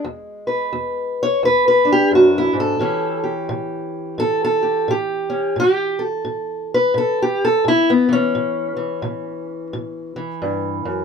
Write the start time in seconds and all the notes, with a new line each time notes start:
Already playing: G#3
0.04 E2
0.47 B4
0.73 E2
1.23 C#5
1.43 E2 B4
1.68 B4
1.85 D4
1.92 G4
2.11 F#2 F#4
2.38 E4
2.53 G#2
2.60 A4
2.79 A2 E3 C#4 G4
3.24 G4
3.49 A2
4.18 A2 A4
4.45 A4
4.63 G4
4.88 A2 G4
5.30 C#4
5.56 A2 G4
5.99 A4
6.25 A2
6.74 B4
6.94 A2 A4
7.22 G4
7.45 A4
7.65 A2 E4
7.90 B3
8.09 E3
8.13 C#4
8.35 A2
8.77 E3
9.02 A2
9.73 A2
10.16 E3
10.42 G2
10.85 F#2